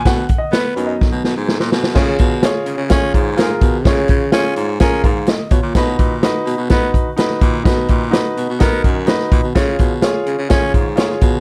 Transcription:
<<
  \new Staff \with { instrumentName = "Grand piano" } { \time 4/4 \key des \mixolydian \tempo 4 = 126 << { \tuplet 3/2 { ges''4 ees''8 ces''4 ees''8 } r2 | r1 | r2 r8 <aes' f''>8 ees''8 <f' des''>8~ | <f' des''>8 r2. r8 |
r1 | r1 | } \\ { <ges ces' ees'>8 r4 <ges ces' ees'>2~ <ges ces' ees'>8 | <f' aes' des''>8. r16 <f' aes' des''>8. r16 <f' aes' des''>8. r16 <f' aes' bes'>8. r16 | <f' aes' des''>8. r16 <f' aes' des''>8. r16 <f' aes' bes'>8 r4. | <ees' ges' ces''>8. r16 <ees' ges' ces''>8. r16 <ees' ges' ces''>8. r16 <ees' ges' ces''>8. r16 |
<ees' ges' ces''>8. r16 <ees' ges' ces''>8. r16 <ees' ges' bes'>8. r16 <ees' ges' ces''>8. r16 | <f' aes' des''>8. r16 <f' aes' des''>8. r16 <f' aes' des''>8. r16 <f' aes' des''>8. r16 | } >> }
  \new Staff \with { instrumentName = "Baritone saxophone" } { \clef bass \time 4/4 \key des \mixolydian ces8 r8 ces'8 ges,8 r16 ces16 ces16 aes,8 bes,16 ces8 | des8 ces8. r16 des16 des16 des'8 aes,4 ces8 | des8 des8 des'8 aes,8 des'8 aes,8. r16 ces16 bes,16 | ces8 bes,8. r16 ces16 ces16 ces'8 r4 bes,8 |
ces8 bes,8. r16 ces16 ces16 ces'8 ges,8. r16 bes,16 ces16 | des8 ces8. r16 des16 des16 des'8 aes,4 ces8 | }
  \new DrumStaff \with { instrumentName = "Drums" } \drummode { \time 4/4 <hh bd sn>8 <hh bd>8 <hh sn>8 hh8 <bd sn>8 sn8 sn16 sn16 sn16 sn16 | <cymc bd sn>8 <hh bd>8 <hh sn>8 hh8 <hh bd sn>8 <hh bd>8 <hh sn>8 <hh bd>8 | <hh bd sn>8 <hh bd>8 <hh sn>8 hh8 <hh bd sn>8 <hh bd>8 <hh sn>8 <hh bd>8 | <hh bd sn>8 <hh bd>8 <hh sn>8 hh8 <hh bd sn>8 <hh bd>8 <hh sn>16 sn16 <hh bd>8 |
<hh bd sn>8 <hh bd>8 <hh sn>8 hh8 <hh bd sn>8 <hh bd>8 <hh sn>16 sn16 <hh bd>8 | <hh bd sn>8 <hh bd>8 <hh sn>8 hh8 <hh bd sn>8 <hh bd>8 <hh sn>16 sn16 <hh bd>8 | }
>>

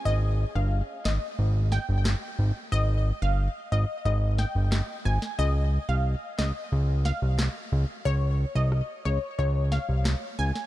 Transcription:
<<
  \new Staff \with { instrumentName = "Synth pluck" } { \time 4/4 \key f \minor \tempo 4 = 90 ees''16 r8 f''16 r8 ees''16 r8. g''16 r4 r16 | ees''16 r8 f''16 r8 ees''16 r16 ees''16 r16 g''16 r8. aes''16 r16 | ees''16 r8 f''16 r8 ees''16 r8. f''16 r4 r16 | des''16 r8 ees''16 r8 des''16 r16 des''16 r16 f''16 r8. aes''16 r16 | }
  \new Staff \with { instrumentName = "Analog synth bass" } { \clef bass \time 4/4 \key f \minor aes,,8. g,,8 r16 aes,,16 r16 aes,,8. g,,8 r16 aes,,16 r16 | aes,,8. g,,8 r16 aes,,16 r16 aes,,8. g,,8 r16 aes,,16 r16 | des,8. c,8 r16 des,16 r16 des,8. c,8 r16 des,16 r16 | des,8. c,8 r16 des,16 r16 des,8. c,8 r16 des,16 r16 | }
  \new DrumStaff \with { instrumentName = "Drums" } \drummode { \time 4/4 r4 r8 <hc sn>8 r8 sn8 <hc ss sn>4 | r4 r4 r8 sn8 <hc ss sn>8. sn16 | r4 r8 <hc sn>8 r8 sn8 <hc ss sn>4 | r4 ss4 r8 sn8 <hc ss sn>8. sn16 | }
>>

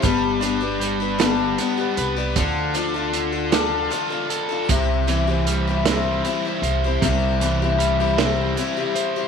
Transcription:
<<
  \new Staff \with { instrumentName = "Twelve-string acoustic guitar" } { \time 6/8 \key c \major \tempo 4. = 52 <g, d g b d' g'>8 <g b d' g'>16 <g b d' g'>8 <g b d' g'>16 <g, d g b d' g'>8 <g b d' g'>16 <g b d' g'>8 <g b d' g'>16 | <d f d' f' a'>8 <f d' f' a'>16 <d' f' a'>8 <d' f' a'>16 <d f d' f' a'>8 <f d' f' a'>16 <d' f' a'>8 <d' f' a'>16 | <c g c' e' g'>8 <g c' e' g'>16 <c' e' g'>8 <c' e' g'>16 <c g c' e' g'>8 <g c' e' g'>16 <c' e' g'>8 <c' e' g'>16 | <c g c' e' g'>8 <g c' e' g'>16 <c' e' g'>8 <c' e' g'>16 <c g c' e' g'>8 <g c' e' g'>16 <c' e' g'>8 <c' e' g'>16 | }
  \new Staff \with { instrumentName = "Overdriven electric guitar" } { \time 6/8 \key c \major g8 d'8 g8 d'8 b8 b'8 | d8 d'8 d8 d'8 f'8 a'8 | c8 e8 g8 c'8 e'8 c''8 | c8 e8 g8 c'8 e'8 c''8 | }
  \new Staff \with { instrumentName = "Upright bass" } { \clef bass \time 6/8 \key c \major g,,2 r8 c,8 | d,2 r4 | c,2 r8 c,8 | c,2 r4 | }
  \new DrumStaff \with { instrumentName = "Drums" } \drummode { \time 6/8 <hh bd>8 hh8 hh8 <hh sn>8 hh8 hh8 | <hh bd>8 hh8 hh8 <hh sn>8 hh8 hh8 | <hh bd>8 hh8 hh8 <hh sn>8 hh8 hh8 | <hh bd>8 hh8 hh8 <hh sn>8 hh8 hh8 | }
>>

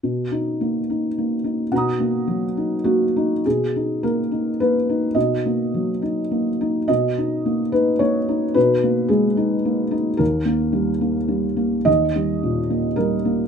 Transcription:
<<
  \new Staff \with { instrumentName = "Felt piano" } { \time 3/4 \key b \major \tempo 4 = 107 << { r2. | <fis'' ais'' dis'''>2. | r2. | r2. |
r2. | r2. | r2. | r2. | } \\ { r2. | r2 fis'4 | gis'4 ais'4 b'4 | dis''4. r4. |
dis''4. b'8 cis''4 | b'4 gis'4. r8 | ais'2. | dis''2 ais'4 | } >> }
  \new Staff \with { instrumentName = "Felt piano" } { \time 3/4 \key b \major b,8 dis'8 ais8 dis'8 ais8 dis'8 | b,8 ais8 fis8 dis'8 ais8 dis'8 | b,8 dis'8 ais8 dis'8 ais8 dis'8 | b,8 ais8 fis8 dis'8 ais8 dis'8 |
b,8 dis'8 ais8 dis'8 ais8 dis'8 | b,8 ais8 gis8 dis'8 ais8 dis'8 | dis,8 ais8 g8 ais8 g8 ais8 | dis,8 g8 ais,8 ais8 g8 ais8 | }
>>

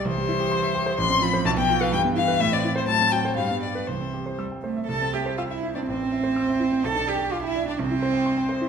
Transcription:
<<
  \new Staff \with { instrumentName = "Violin" } { \time 2/4 \key c \major \tempo 4 = 125 c''2 | c'''8 b''8 a''16 g''8 f''16 | g''8 f''8 e''16 d''8 c''16 | a''8 g''8 f''8 d''8 |
c''4 r4 | a''8 g''8 f''16 e''8 d''16 | c''2 | a''8 g''8 f''16 e''8 d''16 |
c''2 | }
  \new Staff \with { instrumentName = "Grand piano" } { \time 2/4 \key c \major c,16 g16 e'16 g'16 c'''16 e''16 g'16 c''16 | a,,16 c'16 f'16 c''16 b,,16 b16 f'16 b'16 | g,16 b16 e'16 b'16 a,16 c'16 e'16 c''16 | a,16 c'16 fis'16 c''16 g,16 b16 g'16 b'16 |
c,16 c'16 g'16 c''16 e'''16 g''16 c''16 e''16 | c,16 c'16 e''16 c''16 e'''16 e''16 e'16 c'16 | a,,16 c'16 e''16 c''16 e'''16 e''16 e'16 c'16 | b,,16 d'16 d''16 g''16 d'''16 g''16 d''16 d'16 |
c,16 e'16 c''16 g''16 c'''16 g''16 c''16 e'16 | }
  \new Staff \with { instrumentName = "Cello" } { \time 2/4 \key c \major e2 | f2 | e2 | fis4 g4 |
e4 g8 a8 | a'8 g'8 f'16 e'8 d'16 | c'2 | a'8 g'8 f'16 e'8 d'16 |
c'2 | }
>>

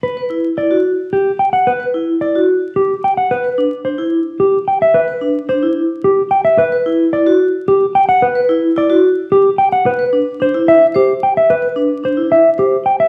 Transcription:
<<
  \new Staff \with { instrumentName = "Clean electric guitar" } { \time 3/4 \key g \major \tempo 4 = 110 b'16 r8. d''16 r8. g'16 r16 g''16 fis''16 | b'16 r8. d''16 r8. g'16 r16 g''16 fis''16 | b'16 r8. c''16 r8. g'16 r16 g''16 e''16 | b'16 r8. c''16 r8. g'16 r16 g''16 e''16 |
b'16 r8. d''16 r8. g'16 r16 g''16 fis''16 | b'16 r8. d''16 r8. g'16 r16 g''16 fis''16 | b'16 r8. c''16 r16 e''16 r16 g'16 r16 g''16 e''16 | b'16 r8. c''16 r16 e''16 r16 g'16 r16 g''16 e''16 | }
  \new Staff \with { instrumentName = "Vibraphone" } { \time 3/4 \key g \major r16 b'16 e'16 r16 e'16 fis'16 r4. | r16 b'16 e'16 r16 e'16 fis'16 r4. | r16 b'16 d'16 r16 d'16 e'16 r4. | r16 b'16 d'16 r16 d'16 e'16 r4. |
r16 b'16 e'16 r16 e'16 fis'16 r4. | r16 b'16 e'16 r16 e'16 fis'16 r4. | r16 b'16 d'16 r16 d'16 e'16 r8 c''16 r8. | r16 b'16 d'16 r16 d'16 e'16 r8 c''16 r8. | }
>>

